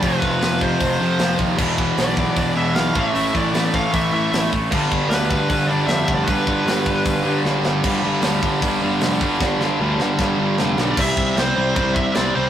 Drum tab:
CC |--------|x-------|--------|x-------|
HH |o-o-o-o-|--o-o-o-|o-o-o-o-|--o-o-o-|
SD |--o---o-|--o---o-|--o---o-|--o---o-|
BD |oo-oo--o|oo-oo--o|-o-oo--o|oo-oo--o|

CC |--------|x-------|--------|x-x-x-x-|
HH |o-o-o---|--o-o-o-|--------|--------|
SD |--o---oo|--o---o-|oo-oo-oo|--o---o-|
BD |oo-oo---|o--oo--o|o---o---|oo--oo--|